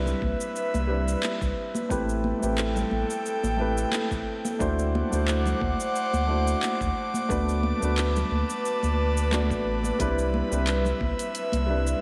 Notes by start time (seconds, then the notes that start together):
Already playing: C2 G3 C4 D4 E4 B4 E5
0.06 low conga, shaker
0.22 C2, kick, high conga
0.41 shaker
0.56 shaker
0.74 C2, high conga, shaker
0.87 G3 C4 D4 E4
0.91 B4
1.08 shaker
1.23 clap, high conga, shaker
1.41 C2, kick, shaker
1.75 high conga, shaker
1.89 A1 A3 C4 E4 G4 A4 B4 G5, kick, shaker
2.09 shaker
2.24 high conga
2.40 A1 A3 C4 E4 G4, shaker
2.44 B4
2.58 clap, shaker
2.76 low conga, shaker
2.91 A1, high conga
3.10 shaker
3.26 shaker
3.43 A1, high conga, shaker
3.57 A3 C4 E4 G4
3.61 B4
3.78 shaker
3.91 clap, high conga, shaker
4.11 A1, kick, shaker
4.45 high conga, shaker
4.59 D2 A3 D4 E4 F#4 C5 F#5 D6, kick, shaker
4.79 shaker
4.95 high conga
5.10 D2 A3 D4 E4 F#4, shaker
5.15 C5
5.28 clap, shaker
5.46 low conga, shaker
5.61 D2, kick, high conga
5.80 shaker
5.96 shaker
6.13 D2, high conga, shaker
6.27 A3 D4 E4 F#4
6.31 C5
6.48 shaker
6.63 clap, high conga, shaker
6.81 D2, kick, shaker
7.14 high conga, shaker
7.29 D2 A3 B3 D4 F#4 B4 A5, kick, shaker
7.49 shaker
7.63 high conga
7.80 D2 A3 B3 D4 F#4, shaker
7.84 B4
7.98 clap, shaker
8.16 low conga, shaker
8.31 D2, high conga
8.50 shaker
8.65 shaker
8.83 D2, high conga, shaker
9.17 shaker
9.31 A3 B3 D4 F#4 D5, clap, high conga, shaker
9.51 A1, kick, shaker
9.84 high conga, shaker
9.99 C2 G3 C4 D4 E4 B4 E5, kick, closed hi-hat, shaker
10.19 shaker
10.34 high conga
10.49 C2 G3 C4 D4 E4, shaker
10.54 B4
10.67 clap, closed hi-hat, shaker
10.85 low conga, shaker
11.00 C2, kick, high conga
11.19 closed hi-hat, shaker
11.35 closed hi-hat, shaker
11.52 C2, closed hi-hat, high conga, shaker
11.66 G3 C4 D4 E4
11.70 B4
11.87 shaker